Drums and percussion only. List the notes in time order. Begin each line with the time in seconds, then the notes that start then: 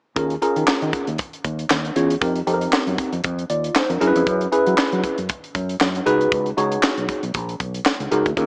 0.16 kick, closed hi-hat
0.30 closed hi-hat
0.42 closed hi-hat
0.56 closed hi-hat
0.67 snare, clap
0.82 closed hi-hat
0.93 kick, closed hi-hat
1.07 closed hi-hat
1.18 kick, closed hi-hat
1.33 closed hi-hat
1.44 kick, closed hi-hat
1.59 closed hi-hat
1.70 snare, clap
1.85 closed hi-hat
1.96 closed hi-hat
2.10 closed hi-hat
2.22 kick, closed hi-hat
2.36 closed hi-hat
2.47 closed hi-hat
2.61 closed hi-hat
2.73 snare, clap
2.87 closed hi-hat
2.98 kick, closed hi-hat
3.13 closed hi-hat
3.24 kick, closed hi-hat
3.39 closed hi-hat
3.50 closed hi-hat
3.64 closed hi-hat
3.75 snare, clap
3.90 closed hi-hat
4.01 closed hi-hat
4.16 closed hi-hat
4.27 kick, closed hi-hat
4.41 closed hi-hat
4.52 closed hi-hat
4.67 closed hi-hat
4.78 snare, clap
4.92 closed hi-hat
5.04 kick, closed hi-hat
5.18 closed hi-hat
5.29 kick, closed hi-hat
5.44 closed hi-hat
5.55 kick, closed hi-hat
5.69 closed hi-hat
5.80 snare, clap
5.95 closed hi-hat
6.06 closed hi-hat
6.21 closed hi-hat
6.32 kick, closed hi-hat
6.46 closed hi-hat
6.58 closed hi-hat
6.72 closed hi-hat
6.83 snare, clap
6.97 closed hi-hat
7.09 kick, closed hi-hat
7.23 closed hi-hat
7.34 kick, closed hi-hat
7.49 closed hi-hat
7.60 kick, closed hi-hat
7.74 closed hi-hat
7.85 snare, clap
8.00 closed hi-hat
8.12 closed hi-hat
8.26 kick, closed hi-hat
8.37 kick, closed hi-hat